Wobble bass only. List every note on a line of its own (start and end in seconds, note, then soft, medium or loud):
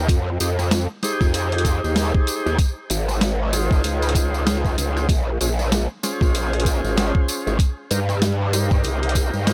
0.09 0.38 F2 loud
0.40 0.87 F2 medium
1.21 1.81 F2 loud
1.84 2.12 D#2 loud
2.46 2.57 D#2 loud
2.90 3.82 G#1 loud
3.84 4.76 C#2 loud
4.78 5.07 C#2 loud
5.09 5.38 A#1 loud
5.41 5.87 A#1 medium
6.21 6.81 A#1 loud
6.84 7.12 G#1 loud
7.47 7.57 G#1 loud
7.91 8.82 G2 loud
8.84 9.31 C2 loud
9.34 9.53 G2 loud